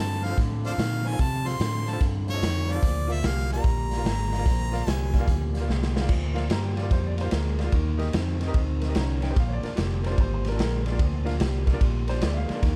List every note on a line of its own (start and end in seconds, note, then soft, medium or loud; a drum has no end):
0.00 0.21 F2 medium
0.00 0.36 G2 medium
0.00 0.21 D3 medium
0.00 0.25 A5 loud
0.22 0.36 F2 medium
0.22 0.36 D3 medium
0.22 0.27 C5 soft
0.22 0.38 F5 medium
0.22 0.27 F5 soft
0.22 snare soft
0.22 closed hi-hat medium
0.30 0.37 F4 medium
0.30 0.37 A4 medium
0.30 0.38 C5 medium
0.30 0.38 F5 medium
0.37 0.76 F2 medium
0.37 0.77 A2 medium
0.37 0.76 D3 medium
0.37 kick loud
0.37 snare soft
0.37 closed hi-hat medium
0.64 0.68 C5 soft
0.64 0.72 C5 medium
0.64 0.75 D5 medium
0.64 0.68 F5 soft
0.64 1.09 F5 medium
0.64 snare soft
0.64 closed hi-hat medium
0.71 0.78 F4 medium
0.71 0.79 A4 medium
0.71 0.79 C5 soft
0.71 0.79 F5 medium
0.78 1.02 F2 medium
0.78 1.18 A#2 medium
0.78 1.03 D#3 medium
0.78 snare medium
0.78 closed hi-hat medium
1.05 1.17 F2 medium
1.05 1.18 D#3 medium
1.05 1.08 C5 soft
1.05 1.09 F5 soft
1.05 1.22 G#5 loud
1.05 snare soft
1.05 closed hi-hat soft
1.12 1.19 F4 medium
1.12 1.20 A4 medium
1.12 1.20 C5 medium
1.12 1.20 F5 medium
1.18 1.57 F2 medium
1.18 1.57 C3 medium
1.18 1.59 C3 medium
1.18 1.49 A5 loud
1.18 kick loud
1.18 snare soft
1.18 closed hi-hat medium
1.45 1.53 F4 medium
1.45 1.53 A4 medium
1.45 1.53 C5 medium
1.45 1.53 F5 medium
1.45 1.92 C6 loud
1.45 snare soft
1.45 closed hi-hat medium
1.60 1.84 F2 medium
1.60 2.00 A2 medium
1.60 1.85 D3 medium
1.60 snare loud
1.60 closed hi-hat medium
1.86 1.99 F2 medium
1.86 2.00 D3 medium
1.86 1.90 C5 soft
1.86 1.91 F5 soft
1.86 2.03 A5 medium
1.86 snare soft
1.86 closed hi-hat medium
1.93 2.00 F4 medium
1.93 2.01 A4 medium
1.93 2.01 C5 medium
1.93 2.01 F5 medium
2.00 2.39 F2 medium
2.00 2.41 G2 medium
2.00 2.39 D3 loud
2.00 kick loud
2.00 snare soft
2.00 closed hi-hat medium
2.27 2.31 C5 soft
2.27 2.73 C#5 loud
2.27 2.32 F5 soft
2.27 snare soft
2.27 closed hi-hat medium
2.33 2.41 F4 medium
2.33 2.41 A4 soft
2.33 2.42 C5 soft
2.33 2.42 D#5 medium
2.42 2.66 F2 medium
2.42 2.82 F2 medium
2.42 2.66 D#3 medium
2.42 snare loud
2.42 closed hi-hat medium
2.67 2.81 F2 medium
2.67 2.81 D#3 medium
2.67 2.72 C5 soft
2.67 2.72 F5 soft
2.67 snare soft
2.67 closed hi-hat medium
2.72 2.82 F4 medium
2.72 2.82 A4 medium
2.72 2.82 C5 soft
2.72 3.14 D5 loud
2.76 2.83 F5 medium
2.82 3.22 D2 medium
2.82 3.20 A#2 medium
2.82 3.21 F3 loud
2.82 kick loud
2.82 closed hi-hat medium
3.08 3.16 F4 medium
3.08 3.16 A#4 medium
3.08 3.16 D5 medium
3.08 3.17 F5 medium
3.08 snare soft
3.08 closed hi-hat medium
3.12 3.28 E5 medium
3.23 3.63 C2 medium
3.23 3.48 A#2 medium
3.23 3.48 G3 medium
3.23 3.52 F5 loud
3.23 snare loud
3.23 closed hi-hat medium
3.49 3.63 A#2 medium
3.49 3.63 G3 medium
3.49 3.53 D5 soft
3.49 3.54 G5 soft
3.49 4.90 A#5 medium
3.49 snare soft
3.49 closed hi-hat medium
3.55 3.63 F4 medium
3.55 3.64 A#4 medium
3.55 3.64 D5 medium
3.55 3.64 F5 medium
3.64 4.04 A#1 medium
3.64 4.02 A#2 medium
3.64 4.03 G3 medium
3.64 kick loud
3.64 closed hi-hat medium
3.90 3.94 D5 soft
3.90 3.95 F5 soft
3.90 snare soft
3.90 closed hi-hat medium
3.97 4.05 F4 medium
3.97 4.05 A#4 medium
3.97 4.05 D5 medium
3.97 4.06 F5 medium
4.04 4.44 G#1 loud
4.04 4.29 A#2 medium
4.04 4.29 G#3 medium
4.04 snare loud
4.04 closed hi-hat medium
4.31 4.44 A#2 medium
4.31 4.45 G#3 medium
4.31 4.35 D5 soft
4.31 4.36 F5 medium
4.31 snare soft
4.31 closed hi-hat soft
4.38 4.45 F4 medium
4.38 4.46 A#4 medium
4.38 4.46 D5 medium
4.38 4.46 F5 medium
4.46 4.86 A#1 medium
4.46 4.84 A#2 medium
4.46 4.84 F3 medium
4.46 kick loud
4.46 snare soft
4.46 closed hi-hat medium
4.72 4.79 F4 medium
4.72 4.80 A#4 medium
4.72 4.80 D5 medium
4.72 4.80 F5 medium
4.72 snare soft
4.72 closed hi-hat medium
4.87 5.26 C2 medium
4.87 5.11 A#2 medium
4.87 5.11 G3 medium
4.87 5.66 G#5 medium
4.87 snare loud
4.87 closed hi-hat medium
5.13 5.26 A#2 medium
5.13 5.27 G3 medium
5.13 5.17 D5 soft
5.13 5.17 F5 soft
5.13 kick medium
5.13 snare soft
5.13 closed hi-hat medium
5.19 5.27 F4 medium
5.19 5.27 A#4 medium
5.19 5.28 D5 medium
5.19 5.28 F5 loud
5.27 5.67 D2 medium
5.27 5.65 A#2 medium
5.27 5.66 G3 medium
5.27 kick medium
5.27 closed hi-hat medium
5.53 5.57 D5 soft
5.53 5.58 F5 soft
5.53 snare soft
5.53 closed hi-hat medium
5.60 5.68 F4 medium
5.60 5.68 A#4 medium
5.60 5.68 D5 medium
5.60 5.69 F5 medium
5.68 6.08 C2 medium
5.68 5.92 A#2 medium
5.68 5.93 G#3 medium
5.68 snare medium
5.83 snare medium
5.93 6.07 A#2 medium
5.93 6.08 G#3 medium
5.93 5.98 D5 soft
5.93 5.99 F5 soft
5.93 snare medium
6.00 6.08 F4 medium
6.00 6.08 A#4 medium
6.00 6.09 D5 medium
6.00 6.09 F5 medium
6.09 6.49 D2 medium
6.09 6.47 A#2 medium
6.09 6.48 F3 loud
6.09 kick medium
6.09 crash loud
6.34 6.42 F4 medium
6.34 6.42 A#4 medium
6.34 6.43 D5 medium
6.34 6.43 F5 medium
6.34 snare soft
6.34 ride medium
6.50 6.90 G2 medium
6.50 6.74 A#2 medium
6.50 6.75 G3 medium
6.50 6.64 A#5 medium
6.50 snare loud
6.50 ride medium
6.64 6.77 G5 medium
6.74 6.90 A#2 medium
6.74 6.90 G3 medium
6.74 6.77 D5 soft
6.74 6.81 D5 medium
6.74 6.80 F5 soft
6.74 snare soft
6.74 ride medium
6.82 6.90 F4 medium
6.82 6.90 A#4 medium
6.82 6.90 D5 medium
6.82 6.91 F5 medium
6.91 7.31 F2 medium
6.91 7.29 A#2 medium
6.91 7.29 G3 medium
6.91 7.05 C5 medium
6.91 kick loud
6.91 snare soft
6.91 ride medium
7.07 7.14 D5 medium
7.16 7.20 D5 soft
7.16 7.21 F5 soft
7.16 snare soft
7.16 ride medium
7.21 7.31 F4 medium
7.21 7.32 A#4 medium
7.21 7.33 C5 medium
7.21 7.32 D5 medium
7.26 7.32 F5 medium
7.31 7.71 D2 medium
7.31 7.56 A#2 medium
7.31 7.56 G#3 medium
7.31 7.63 A#4 medium
7.31 snare loud
7.31 ride medium
7.57 7.71 A#2 medium
7.57 7.71 G#3 medium
7.57 7.62 D5 soft
7.57 7.62 F5 soft
7.57 snare soft
7.57 ride soft
7.64 7.72 F4 medium
7.64 7.72 A#4 medium
7.64 7.72 D5 medium
7.64 7.73 F5 medium
7.72 8.12 D#2 medium
7.72 8.11 D#3 medium
7.72 8.11 A#3 medium
7.72 kick loud
7.72 ride medium
7.98 8.06 D#4 medium
7.98 8.06 G4 medium
7.98 8.06 A#4 medium
7.98 8.06 D#5 medium
7.98 snare soft
7.98 ride medium
8.13 8.53 F2 medium
8.13 8.38 D#3 medium
8.13 8.38 C4 loud
8.13 snare loud
8.13 ride medium
8.39 8.53 D#3 medium
8.39 8.53 C4 medium
8.39 8.43 A#4 soft
8.39 8.44 D#5 soft
8.39 snare soft
8.39 ride medium
8.47 8.54 D#4 medium
8.47 8.54 G4 medium
8.47 8.55 A#4 medium
8.47 8.55 D#5 medium
8.54 8.94 D2 medium
8.54 8.92 D#3 medium
8.54 8.93 C4 medium
8.54 kick loud
8.54 ride medium
8.81 8.85 A#4 medium
8.81 8.86 D#5 medium
8.81 snare soft
8.81 ride medium
8.88 8.95 D#4 medium
8.88 8.95 G4 medium
8.88 8.95 A#4 medium
8.88 8.96 D#5 medium
8.95 9.35 C2 medium
8.95 9.19 D#3 medium
8.95 9.20 C#4 medium
8.95 9.21 A#5 medium
8.95 snare loud
8.95 ride medium
9.21 9.34 D#3 medium
9.21 9.34 C#4 medium
9.21 9.26 A#4 soft
9.21 9.26 D#5 medium
9.21 9.35 G5 medium
9.21 snare soft
9.21 ride medium
9.29 9.36 D#4 medium
9.29 9.37 G4 medium
9.29 9.37 A#4 medium
9.29 9.37 C5 medium
9.35 9.61 A#1 medium
9.35 9.73 A#2 medium
9.35 9.74 F3 medium
9.35 kick loud
9.35 snare soft
9.35 ride medium
9.39 9.51 F5 medium
9.48 9.53 C#5 medium
9.53 9.63 D5 medium
9.63 9.70 D4 medium
9.63 9.70 F4 medium
9.63 9.70 A#4 medium
9.63 9.71 D5 medium
9.63 snare soft
9.63 ride medium
9.76 10.17 F1 medium
9.76 10.01 A#2 medium
9.76 10.01 G3 medium
9.76 snare loud
9.76 ride medium
10.03 10.16 A#2 medium
10.03 10.16 G3 medium
10.03 10.07 A#4 soft
10.03 10.19 C5 medium
10.03 10.08 D5 soft
10.03 snare soft
10.03 ride medium
10.10 10.17 D4 medium
10.10 10.18 F4 medium
10.10 10.18 A#4 medium
10.10 10.18 D5 medium
10.18 10.58 G#1 medium
10.18 10.56 A#2 medium
10.18 10.56 G3 loud
10.18 10.32 C5 loud
10.18 kick loud
10.18 ride medium
10.34 10.46 C5 medium
10.43 10.47 A#4 soft
10.43 10.48 D5 soft
10.43 snare soft
10.43 ride medium
10.49 10.58 D4 medium
10.49 10.58 F4 medium
10.49 10.50 A#4 medium
10.49 10.59 A#4 medium
10.49 10.59 D5 medium
10.56 10.98 A#1 medium
10.56 10.82 A#2 medium
10.56 10.83 G#3 medium
10.56 10.59 A4 medium
10.56 snare loud
10.56 ride medium
10.61 10.82 A#4 medium
10.84 10.98 A#2 medium
10.84 10.98 G#3 medium
10.84 10.88 A#4 soft
10.84 10.89 D5 medium
10.84 snare soft
10.84 ride medium
10.90 10.98 D4 medium
10.90 10.99 F4 medium
10.90 10.99 A#4 medium
10.90 10.99 D5 medium
10.99 11.39 D2 medium
10.99 11.37 A#2 medium
10.99 11.38 F3 medium
10.99 kick loud
10.99 ride medium
11.25 11.32 D4 medium
11.25 11.33 F4 medium
11.25 11.33 A#4 medium
11.25 11.33 F5 loud
11.25 snare soft
11.25 ride medium
11.39 11.80 C2 medium
11.39 11.64 A#2 medium
11.39 11.64 G3 medium
11.39 snare loud
11.39 ride medium
11.65 11.79 A#2 medium
11.65 11.79 G3 medium
11.65 11.69 A#4 soft
11.65 11.70 D5 soft
11.65 kick medium
11.65 snare soft
11.65 ride medium
11.73 11.80 D4 medium
11.73 11.81 F4 medium
11.73 11.81 A#4 medium
11.73 11.81 D5 medium
11.80 12.21 A#1 medium
11.80 12.19 A#2 medium
11.80 12.19 G3 medium
11.80 kick medium
11.80 ride medium
12.07 12.11 A#4 soft
12.07 12.22 C5 loud
12.07 12.11 D5 soft
12.07 snare soft
12.07 ride medium
12.13 12.21 D4 medium
12.13 12.21 F4 medium
12.13 12.21 A#4 soft
12.13 12.22 D5 medium
12.21 12.47 D2 medium
12.21 12.46 A#2 medium
12.21 12.46 G#3 medium
12.21 12.36 D5 medium
12.21 snare loud
12.21 ride medium
12.33 12.38 E5 medium
12.37 12.76 F5 medium
12.47 12.61 A#2 medium
12.47 12.61 G#3 medium
12.47 12.51 A#4 soft
12.47 12.52 D5 soft
12.47 snare soft
12.47 ride medium
12.54 12.62 D4 medium
12.54 12.62 F4 medium
12.54 12.62 A#4 medium
12.54 12.63 D5 medium
12.62 12.76 D#2 medium
12.62 12.76 D#3 medium
12.62 12.76 A#3 medium
12.62 kick loud
12.62 snare soft
12.62 ride medium